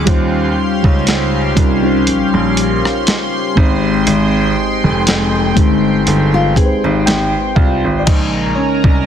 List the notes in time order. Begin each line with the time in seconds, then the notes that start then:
0.05 D#2 G3 C#4 D#4 F4 G4 C5 F5 C6, kick, closed hi-hat
0.83 C#2 G3 C#4 D#4 F4 C#5, kick
1.07 snare, closed hi-hat
1.55 C2 G3 C#4 D#4 F4 A#4, kick, closed hi-hat
1.82 G3 C#4 D#4 F4 C5
2.07 A#1, closed hi-hat
2.34 A#1
2.57 closed hi-hat
2.85 cross-stick
3.07 snare, closed hi-hat
3.55 G#1 G#3 C4 D#4 G4 C5 G5, kick
4.07 G#1, closed hi-hat
4.84 F1
5.07 snare, closed hi-hat
5.55 G1 G#3 C4 D#4 G4 C5, kick, closed hi-hat
6.07 G1, closed hi-hat
6.34 F4
6.55 G#1 G#3 C4 D#4 G4 G#4 B4, kick, closed hi-hat
6.65 C5
6.84 G#1 D#4
7.06 G#1 G4 G5, snare, closed hi-hat
7.56 C2 F4 F5, kick
7.84 G#1
7.99 D5
8.06 A#1 C#3 G#3 D#4 A#4 C5 D#5 G#5 A#5, kick, closed hi-hat, crash
8.55 C#4 C#5
8.84 C2, kick